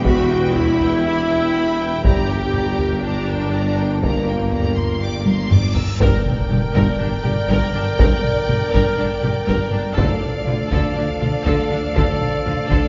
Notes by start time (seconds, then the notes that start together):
Already playing: E1 E2
0.05 F#4 G4 E5 B5, taiko
0.31 B4 G5
0.55 E4 G4 E5 B5, taiko low
0.80 B4 G5, taiko low
1.05 G4 E5 B5
1.30 B4 G5
1.55 G4 E5 B5
1.79 B4 G5
2.04 G1 G2 G4 D5 A#5, taiko
2.29 A#4 G5
2.54 G4 D5 A#5, taiko low
2.78 A#4 G5, taiko low
3.02 D4 G4 D5 A#5
3.28 A#4 G5
3.51 G4 D5 A#5
3.76 A#4 G5
4.01 A#3 G4 D5 A#5, taiko, reverse cymbal
4.27 A#4 G5
4.52 G4 D5 A#5, taiko low
4.76 A#4 C6, taiko low
5.01 G4 D5 D6
5.25 A#4 C6, taiko high
5.49 G4 D5 D6, taiko low-mid
5.74 A#4 E6, taiko low
5.99 G1 G2 D3 D4 A#4 D5 G5, taiko, impact
6.25 taiko mid
6.49 G1 G2 G4, taiko mid
6.75 G1 G2 A#4, taiko
6.99 G1 G2 D4
7.23 G1 G2 G4, taiko mid
7.49 G1 G2 A#4, taiko
7.74 G1 G2 D4
7.98 G1 G2 A#4, taiko
8.24 taiko mid
8.48 G1 G2 G4, taiko mid
8.72 G1 G2 A#4, taiko
8.98 G1 G2 D4
9.23 G1 G2 G4, taiko mid
9.47 G1 G2 A#4, taiko
9.72 G1 G2 D4
9.96 D2 D3 F3 D4 A4 D5 F5, taiko
10.23 taiko mid
10.46 D2 D3 F4, taiko mid
10.71 D2 D3 A4, taiko
10.96 D2 D3 D4
11.20 D2 D3 F4, taiko mid
11.45 D2 D3 A4, taiko
11.70 D2 D3 D4
11.95 D2 D3 A4, taiko
12.21 taiko mid
12.44 D2 D3 F4, taiko mid
12.69 D2 D3 A4, taiko